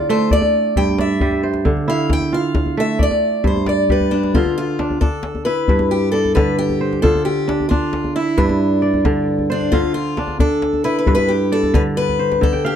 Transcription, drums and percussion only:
0.20 djembe slap soft
0.31 djembe slap soft
0.31 djembe bass medium
0.42 djembe slap soft
0.42 djembe tone soft
0.76 djembe bass medium
0.88 djembe tone soft
0.98 djembe slap medium
1.20 djembe slap soft
1.20 djembe bass medium
1.31 djembe tone soft
1.54 djembe slap soft
1.65 djembe slap soft
1.65 djembe bass medium
1.77 djembe tone soft
2.10 djembe slap medium
2.10 djembe bass medium
2.20 djembe tone soft
2.44 djembe slap soft
2.55 djembe slap medium
2.55 djembe bass medium
2.66 djembe tone medium
2.88 djembe slap soft
2.99 djembe bass medium
3.11 djembe slap soft
3.11 djembe tone soft
3.44 djembe bass medium
3.56 djembe tone soft
3.66 djembe slap medium
3.89 djembe slap soft
3.89 djembe bass medium
4.00 djembe bass soft
4.12 djembe slap soft
4.23 djembe slap soft
4.34 djembe bass medium
4.46 djembe slap soft
4.46 djembe tone medium
4.79 djembe slap medium
4.91 djembe tone medium
5.01 djembe bass medium
5.23 djembe slap medium
5.35 djembe tone medium
5.68 djembe bass medium
5.79 djembe slap medium
5.79 djembe tone soft
6.25 djembe tone soft
6.37 djembe slap medium
6.37 djembe bass medium
6.69 djembe tone medium
6.93 djembe slap soft
7.04 djembe bass medium
7.15 djembe slap soft
7.15 djembe tone medium
7.49 djembe slap medium
7.60 djembe tone medium
7.71 djembe bass medium
7.93 djembe slap medium
8.04 djembe tone medium
8.38 djembe bass medium
8.49 djembe slap soft
8.49 djembe tone medium
8.94 djembe tone medium
9.05 djembe slap medium
9.05 djembe bass medium
9.39 djembe tone soft
9.61 djembe slap soft
9.72 djembe bass medium
9.84 djembe slap soft
9.84 djembe tone medium
10.17 djembe slap medium
10.28 djembe tone soft
10.39 djembe bass medium
10.62 djembe slap medium
10.73 djembe tone soft
11.07 djembe bass medium
11.18 djembe slap medium
11.18 djembe tone soft
11.63 djembe tone medium
11.74 djembe slap medium
11.74 djembe bass medium
12.09 djembe tone medium
12.21 djembe slap soft
12.32 djembe slap medium
12.43 djembe bass medium
12.54 djembe tone medium

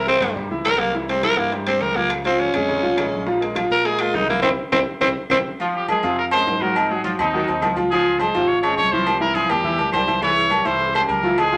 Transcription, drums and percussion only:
0.07 high bongo medium
0.07 high conga medium
0.20 high bongo soft
0.20 high conga medium
0.20 low conga medium
0.20 high timbale medium
0.20 claves medium
0.36 high bongo medium
0.36 high conga soft
0.36 low conga medium
0.50 high bongo soft
0.50 high conga soft
0.65 high bongo medium
0.65 low bongo medium
0.65 high conga soft
0.65 high timbale medium
0.65 low timbale medium
0.65 claves medium
0.79 high bongo soft
0.79 high conga medium
0.95 high bongo medium
1.09 high conga soft
1.09 high timbale medium
1.23 high bongo medium
1.23 high conga medium
1.23 high timbale medium
1.23 claves medium
1.38 high conga soft
1.52 high bongo medium
1.52 high conga soft
1.52 high timbale medium
1.67 high conga soft
1.67 high timbale medium
1.67 claves medium
1.81 high bongo medium
1.81 low bongo medium
1.81 high conga medium
1.96 high conga medium
2.10 high bongo medium
2.10 high timbale loud
2.10 claves medium
2.25 high conga soft
2.25 high timbale medium
2.40 high bongo medium
2.40 high conga medium
2.54 high bongo soft
2.54 high conga medium
2.54 low conga medium
2.54 high timbale medium
2.54 claves medium
2.69 high bongo medium
2.69 high conga soft
2.69 low conga medium
2.84 high bongo soft
2.84 high conga soft
2.97 high bongo medium
2.97 low bongo medium
2.97 high conga soft
2.97 high timbale medium
2.97 low timbale medium
2.97 claves medium
3.12 high bongo soft
3.12 high conga medium
3.27 high bongo medium
3.42 high conga soft
3.42 high timbale medium
3.55 high bongo medium
3.55 high conga medium
3.55 high timbale medium
3.55 claves medium
3.71 high conga soft
3.85 high bongo medium
3.85 high conga soft
3.85 high timbale medium
3.99 high conga soft
3.99 high timbale medium
3.99 claves medium
4.14 high bongo medium
4.14 low bongo medium
4.14 high conga medium
4.14 low timbale medium
4.29 high conga medium
4.43 low bongo medium
4.43 low conga loud
4.43 high timbale loud
4.43 claves medium
4.72 low bongo loud
4.72 low conga loud
4.72 high timbale loud
4.72 claves loud
5.01 low bongo medium
5.01 low conga medium
5.01 high timbale medium
5.01 claves loud
5.30 low bongo loud
5.30 low conga loud
5.30 high timbale medium
5.30 claves loud
5.60 high conga soft
5.60 low agogo medium
5.75 high conga soft
5.88 high conga medium
5.88 low agogo loud
5.88 claves medium
6.03 high conga soft
6.03 low agogo medium
6.18 high conga soft
6.31 high conga soft
6.31 low agogo loud
6.31 claves medium
6.47 high conga medium
6.47 low timbale medium
6.47 low agogo medium
6.61 high conga medium
6.75 high conga soft
6.75 low agogo loud
6.75 claves medium
6.89 high conga soft
7.04 high conga loud
7.04 low agogo medium
7.19 high conga soft
7.19 low conga medium
7.19 low agogo loud
7.19 claves medium
7.33 high conga soft
7.48 low agogo medium
7.62 high conga medium
7.62 low timbale medium
7.62 low agogo loud
7.62 claves medium
7.76 high conga medium
7.76 low agogo medium
7.91 high conga soft
7.91 low agogo medium
8.05 high conga soft
8.19 high conga medium
8.19 low agogo loud
8.19 claves medium
8.35 low agogo medium
8.49 high conga soft
8.63 high conga soft
8.63 low agogo loud
8.63 claves medium
8.78 high conga medium
8.78 low agogo medium
8.92 high conga medium
9.07 high conga soft
9.07 low agogo loud
9.07 claves medium
9.21 high conga soft
9.35 high conga loud
9.35 low agogo medium
9.50 high conga soft
9.50 low conga medium
9.50 low agogo loud
9.50 claves medium
9.64 high conga soft
9.64 low conga medium
9.79 high conga soft
9.79 low agogo medium
9.92 high conga medium
9.92 low timbale medium
9.92 low agogo loud
9.92 claves medium
10.08 high conga medium
10.08 low agogo medium
10.22 cowbell loud
10.22 high conga soft
10.22 low agogo medium
10.36 high conga soft
10.50 cowbell medium
10.50 high conga loud
10.50 low agogo loud
10.50 claves medium
10.65 cowbell medium
10.65 high conga soft
10.65 low agogo medium
10.80 cowbell loud
10.80 high conga soft
10.94 high conga soft
10.94 low agogo loud
10.94 claves medium
11.09 cowbell medium
11.09 high conga medium
11.09 low agogo medium
11.23 cowbell medium
11.23 high conga medium
11.38 cowbell loud
11.38 high conga soft
11.38 low agogo loud
11.38 claves medium
11.52 high conga soft

